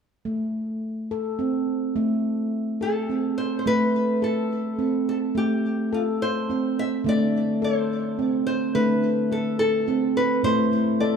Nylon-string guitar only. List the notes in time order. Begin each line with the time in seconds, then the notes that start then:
2.82 A4
3.38 C5
3.59 C5
3.67 B4
4.24 A4
5.09 A4
5.37 G4
5.94 F4
6.22 C5
6.79 E5
7.09 D5
7.64 C5
8.47 C5
8.75 B4
9.32 A4
9.59 A4
10.17 B4
10.44 C5
11.00 D5